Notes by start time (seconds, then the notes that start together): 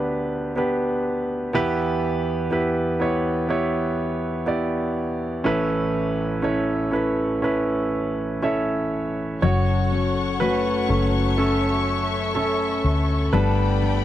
Already playing: D2 D3 B3 D4 G4 B4
0.56 B3 D4 G4 B4
1.53 E2 E3 B3 E4 G4 B4
2.51 B3 E4 G4 B4
3.00 B3 E4 G4 C#5
3.49 B3 E4 G4 C#5
4.46 B3 E4 G4 D5
5.44 A1 A2 C#4 E4 A4 B4
6.42 C#4 E4 A4 C#5
6.91 C#4 E4 A4 B4
7.42 C#4 E4 A4 B4
8.42 C#4 E4 A4 C#5 E5
9.42 F#1 F#2 F#4 A4 C#5 F#5 C#6
9.92 C#4
10.40 A3 C#4 F#4 B4
10.89 F#1 F#3 A3 C#4
11.38 C#4 A4 E5
12.35 C#4 A4
12.84 D2
13.32 G1 G3 A3 B3 D4 A4 B4 D5 G5 B5
13.82 D4